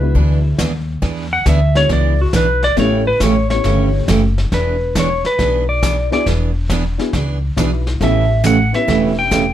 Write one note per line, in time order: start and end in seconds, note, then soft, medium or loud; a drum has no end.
0.00 0.14 C#2 medium
0.00 0.56 G#3 medium
0.00 0.56 B3 medium
0.00 0.56 D4 medium
0.00 0.56 E4 medium
0.00 0.56 F#4 medium
0.00 0.56 G#4 medium
0.00 0.56 B4 medium
0.00 0.55 E5 medium
0.15 0.58 D2 medium
0.15 0.38 E3 medium
0.15 0.39 B3 medium
0.15 0.39 D4 medium
0.15 0.39 G#4 medium
0.15 brush sweep medium
0.15 kick soft
0.58 1.01 D#2 medium
0.58 0.71 E3 medium
0.58 0.72 B3 medium
0.58 0.72 D4 medium
0.58 0.72 G#4 medium
0.58 snare medium
0.58 hi-hat pedal medium
1.02 1.37 E2 medium
1.02 1.26 E3 medium
1.02 1.26 B3 medium
1.02 1.26 D4 medium
1.02 1.26 G#4 medium
1.02 brush sweep medium
1.02 kick soft
1.02 snare soft
1.33 1.46 F#5 medium
1.46 1.83 D2 medium
1.46 1.59 E3 medium
1.46 1.59 B3 medium
1.46 1.59 D4 medium
1.46 1.59 G#4 medium
1.46 1.76 E5 medium
1.46 kick soft
1.46 snare medium
1.46 hi-hat pedal medium
1.75 2.30 G#3 medium
1.75 2.30 B3 medium
1.75 2.31 D4 medium
1.75 2.31 E4 medium
1.75 2.31 F#4 medium
1.75 1.90 C#5 loud
1.75 snare soft
1.89 2.27 C#2 medium
1.89 2.13 E3 medium
1.89 2.13 B3 medium
1.89 2.13 D4 medium
1.89 2.14 G#4 medium
1.89 2.20 D5 medium
1.89 brush sweep soft
1.89 kick soft
1.89 snare soft
2.21 2.34 F#4 soft
2.33 2.70 B1 medium
2.33 2.46 E3 medium
2.33 2.46 B3 medium
2.33 2.46 D4 medium
2.33 2.46 G#4 medium
2.33 2.64 B4 loud
2.33 kick soft
2.33 snare medium
2.33 hi-hat pedal medium
2.63 2.77 D5 loud
2.63 snare soft
2.76 3.12 A1 medium
2.76 3.01 C#3 medium
2.76 3.01 E3 medium
2.76 3.04 A3 medium
2.76 3.01 A3 medium
2.76 3.04 B3 medium
2.76 3.04 C#4 medium
2.76 3.01 C#4 medium
2.76 3.04 E4 medium
2.76 3.04 G4 medium
2.76 3.01 G4 medium
2.76 3.07 C#5 medium
2.76 brush sweep soft
2.76 kick soft
2.76 snare soft
3.07 3.21 B4 medium
3.20 3.58 A1 medium
3.20 3.34 C#3 medium
3.20 3.34 E3 medium
3.20 3.34 A3 medium
3.20 3.34 C#4 medium
3.20 3.34 G4 medium
3.20 3.50 C#5 medium
3.20 kick soft
3.20 snare medium
3.20 hi-hat pedal medium
3.50 4.05 A3 medium
3.50 4.05 B3 soft
3.50 4.05 C#4 soft
3.50 4.06 E4 soft
3.50 4.06 G4 medium
3.50 4.05 C#5 medium
3.50 snare soft
3.64 4.01 G1 medium
3.64 3.88 C#3 medium
3.64 3.88 E3 medium
3.64 3.88 A3 medium
3.64 3.88 C#4 medium
3.64 3.88 G4 medium
3.64 brush sweep soft
3.64 kick soft
3.64 snare soft
4.08 4.45 F#1 medium
4.08 4.21 C#3 medium
4.08 4.21 E3 medium
4.08 4.21 A3 medium
4.08 4.21 C#4 medium
4.08 4.21 G4 medium
4.08 kick soft
4.08 snare medium
4.08 hi-hat pedal medium
4.38 snare soft
4.52 5.22 E1 medium
4.52 4.75 E3 soft
4.52 4.75 B3 medium
4.52 4.75 D4 medium
4.52 4.76 G#4 medium
4.52 4.94 B4 medium
4.52 brush sweep soft
4.52 kick soft
4.52 snare soft
4.95 5.08 E3 medium
4.95 5.08 B3 medium
4.95 5.08 D4 medium
4.95 5.08 G#4 medium
4.95 kick soft
4.95 snare medium
4.95 hi-hat pedal medium
4.99 5.26 C#5 medium
5.25 5.66 B4 medium
5.25 snare soft
5.39 6.09 B1 medium
5.39 5.62 E3 medium
5.39 5.63 B3 medium
5.39 5.63 D4 medium
5.39 5.63 G#4 medium
5.39 brush sweep soft
5.39 kick soft
5.39 snare soft
5.69 6.09 D5 medium
5.83 5.95 E3 medium
5.83 5.95 B3 medium
5.83 5.95 D4 medium
5.83 5.96 G#4 medium
5.83 kick soft
5.83 snare medium
5.83 hi-hat pedal medium
6.11 6.24 B3 medium
6.11 6.25 D4 medium
6.11 6.25 E4 medium
6.11 6.25 F#4 medium
6.11 6.25 G#4 loud
6.11 6.26 D5 medium
6.11 snare soft
6.26 6.96 E1 medium
6.26 6.50 E3 medium
6.26 6.50 B3 medium
6.26 6.50 D4 medium
6.26 6.50 G#4 medium
6.26 brush sweep medium
6.26 kick soft
6.26 snare soft
6.70 6.83 E3 medium
6.70 6.83 B3 medium
6.70 6.83 D4 medium
6.70 6.83 G#4 medium
6.70 kick soft
6.70 snare medium
6.70 hi-hat pedal medium
6.98 7.11 B3 medium
6.98 7.12 D4 medium
6.98 7.12 E4 medium
6.98 7.12 F#4 medium
6.98 7.12 G#4 medium
6.98 snare soft
7.13 7.51 C#2 medium
7.13 7.37 E3 medium
7.13 7.37 B3 medium
7.13 7.38 D4 medium
7.13 7.38 G#4 medium
7.13 brush sweep soft
7.13 kick soft
7.13 snare soft
7.56 7.94 B1 medium
7.56 7.70 E3 medium
7.56 7.83 B3 medium
7.56 7.70 B3 medium
7.56 7.83 D4 medium
7.56 7.70 D4 medium
7.56 7.84 E4 medium
7.56 7.84 F#4 medium
7.56 7.70 G#4 medium
7.56 7.84 B4 medium
7.56 kick soft
7.56 snare medium
7.56 hi-hat pedal medium
7.87 snare soft
8.00 8.70 A1 loud
8.00 8.24 C#3 medium
8.00 8.25 E3 medium
8.00 8.25 A3 medium
8.00 8.27 B3 medium
8.00 8.27 C#4 medium
8.00 8.25 C#4 medium
8.00 8.27 E4 medium
8.00 8.28 G4 medium
8.00 8.25 G4 medium
8.00 8.28 A4 medium
8.00 8.43 E5 medium
8.00 brush sweep soft
8.00 kick soft
8.00 snare soft
8.44 8.56 C#3 medium
8.44 8.56 E3 medium
8.44 8.56 A3 medium
8.44 8.57 C#4 medium
8.44 8.57 G4 medium
8.44 8.74 F#5 loud
8.44 kick soft
8.44 snare medium
8.44 hi-hat pedal medium
8.73 9.28 B3 medium
8.73 9.28 C#4 medium
8.73 9.28 E4 medium
8.73 9.29 G4 medium
8.73 9.29 B4 medium
8.73 9.15 E5 loud
8.73 snare soft
8.88 9.54 E1 medium
8.88 9.11 C#3 medium
8.88 9.11 E3 medium
8.88 9.11 A3 medium
8.88 9.11 C#4 medium
8.88 9.11 G4 medium
8.88 brush sweep medium
8.88 kick soft
8.88 snare soft
9.19 9.54 G5 medium
9.31 9.44 C#3 medium
9.31 9.44 E3 medium
9.31 9.44 A3 medium
9.31 9.44 C#4 medium
9.31 9.44 G4 medium
9.31 kick soft
9.31 snare medium
9.31 hi-hat pedal medium